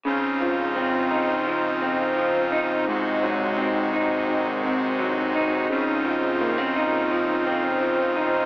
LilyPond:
<<
  \new Staff \with { instrumentName = "Pipe organ" } { \time 4/4 \key des \major \tempo 4 = 85 << { <des c' f'>1 | <c aes ges'>1 | <des c' f'>1 | } \\ { ees'1~ | ees'1~ | ees'1 | } >> }
  \new Staff \with { instrumentName = "Clean electric guitar" } { \time 4/4 \key des \major des8 f8 c'8 ees'8 f8 c'8 f8 ees'8 | aes,8 ges8 c'8 ees'8 ees8 c'8 ges8 ees'8 | des8 f8 bes16 c'16 ees'8 f8 c'8 f8 ees'8 | }
>>